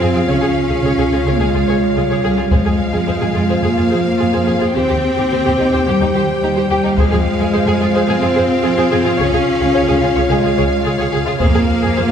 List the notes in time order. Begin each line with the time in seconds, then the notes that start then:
Already playing: C4 F4 C5 F5
0.00 F2 G#4
0.14 F2 F4 G#4
0.28 C#2 C#4 G#4 C#5
0.41 C#2 G#4
0.70 C#2 G#4
0.84 C#2 G#4 C#5
0.98 C#2 G#4
1.12 C#2 F4 G#4
1.26 C#2 G#4 C#5
1.40 C#2 G#3 G#4
1.54 C#2 F4 G#4
1.68 C#2 G#4 C#5
1.96 C#2 G3 F4 G#4
2.10 C#2 G#4 C#5
2.24 C#2 G#4
2.37 C#2 F4 G#4
2.51 F2 G#3 F4 G#4 C5 F5, taiko
2.65 F2 G#4
2.92 F2 G#4
3.07 F2 G#4 C5
3.21 F2 G#4
3.35 F2 F4 G#4
3.49 F2 G#4 C5
3.63 F2 A#3 G#4
3.77 F2 F4 G#4
3.90 F2 G#4 C5
4.18 F2 F4 G#4
4.33 F2 G#4 C5
4.47 F2 G#4
4.60 F2 F4 G#4
4.75 D#2 C4 G4 C5 G5
4.89 D#2 G4
5.17 D#2 G4
5.31 D#2 G4 C5
5.45 D#2 G4
5.59 D#2 D#4 G4
5.72 D#2 G4 C5
5.87 D#2 G3 G4
6.01 D#2 D#4 G4
6.14 D#2 G4 C5
6.42 D#2 G3 D#4 G4
6.55 D#2 G4 C5
6.70 D#2 G4
6.84 D#2 D#4 G4
6.97 F2 G#3 F4 G#4 C5 F5, taiko
7.11 F2 G#4
7.39 F2 G#4
7.53 F2 G#4 C5
7.66 F2 G#4
7.80 F2 F4 G#4
7.94 F2 G#4 C5
8.08 F2 C4 G#4
8.22 F2 F4 G#4
8.36 F2 G#4 C5
8.63 F2 F4 G#4
8.77 F2 G#4 C5
8.92 F2 G#4
9.04 F2 F4 G#4
9.18 C#2 C#4 G#4 C#5
9.33 C#2 G#4
9.61 C#2 G#4
9.74 C#2 G#4 C#5
9.88 C#2 G#4
10.02 C#2 F4 G#4
10.15 C#2 G#4 C#5
10.29 C#2 G#3 G#4
10.43 C#2 F4 G#4
10.57 C#2 G#4 C#5
10.84 C#2 F4 G#4
10.98 C#2 G#4 C#5
11.12 C#2 G#4
11.26 C#2 F4 G#4
11.40 F2 A#3 F4 G#4 C5 F5, taiko
11.54 F2 G#4
11.82 F2 G#4
11.96 F2 G#4 C5